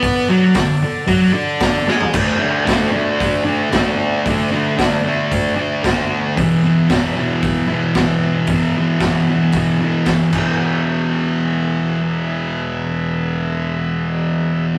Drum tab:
CC |----------------|x---------------|----------------|----------------|
HH |o---o---o---o---|----o---o---o---|o---o---o---o---|o---o---o---o---|
SD |----o-------o-o-|----o-------o---|----o-------o---|----o-------o---|
FT |---------------o|----------------|----------------|----------------|
BD |o---o---o---o---|o---o---o---o---|o---o---o---o---|o---o---o---o---|

CC |--------------x-|----------------|----------------|
HH |o---o---o---o---|----------------|----------------|
SD |----o-------o---|----------------|----------------|
FT |----------------|----------------|----------------|
BD |o---o---o---o-o-|----------------|----------------|